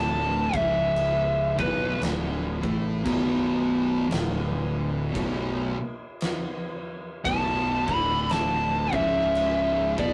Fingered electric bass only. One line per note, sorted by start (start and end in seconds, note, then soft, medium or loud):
0.00 0.49 D1 loud
0.53 1.54 C#1 medium
1.59 1.98 B0 loud
2.00 2.59 D1 medium
2.64 3.03 A1 loud
3.05 4.06 B0 loud
4.11 5.12 D1 loud
5.15 5.74 B0 medium
7.26 7.84 B0 loud
7.88 8.89 D1 loud
8.93 9.94 C#1 loud
9.98 10.13 B1 loud